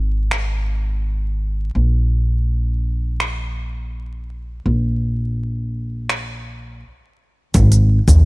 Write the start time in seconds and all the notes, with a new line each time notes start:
Already playing: G#1
0.31 finger snap
1.75 A#1
3.20 finger snap
4.66 A#1
6.09 finger snap
7.54 G#1, kick, closed hi-hat, cabasa
7.72 closed hi-hat, cabasa
8.08 D#2, kick, closed hi-hat, cabasa